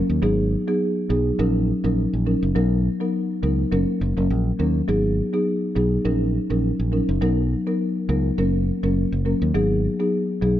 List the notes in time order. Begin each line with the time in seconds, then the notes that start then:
Already playing: F#3 A#3 C#4 A#4
0.10 D#2
0.22 G#1 F#3 B3 D#4 G#4
0.68 F#3 B3 D#4 G#4
1.10 B1 F#3 B3 D#4 G#4
1.39 A#1 F#3 C#4 D#4 A#4
1.84 A#1 F#3 C#4 D#4 A#4
2.13 A#1
2.26 F#3 C#4 D#4 A#4
2.43 F#1
2.55 B1 F#3 B3 D#4 A#4
3.00 F#3 B3 D#4 A#4
3.43 C#2 F#3 B3 D#4 A#4
3.72 F#1 F#3 A#3 C#4 A#4
4.01 F#1
4.17 F#1 F#3 A#3 C#4 A#4
4.30 A#1
4.59 D#2 F#3 A#3 C#4 A#4
4.88 G#1 F#3 B3 D#4 G#4
5.33 F#3 B3 D#4 G#4
5.75 B1 F#3 B3 D#4 G#4
6.05 A#1 F#3 C#4 D#4 A#4
6.50 A#1 F#3 C#4 D#4 A#4
6.79 A#1
6.92 F#3 C#4 D#4 A#4
7.09 F#1
7.21 B1 F#3 B3 D#4 A#4
7.67 F#3 B3 D#4 A#4
8.09 C#2 F#3 B3 D#4 A#4
8.38 F#1 F#3 A#3 C#4 A#4
8.83 F#1 F#3 A#3 C#4 A#4
9.12 F#1
9.25 F#3 A#3 C#4 A#4
9.42 D#2
9.54 G#1 F#3 B3 D#4 G#4
10.00 F#3 B3 D#4 G#4
10.42 B1 F#3 B3 D#4 G#4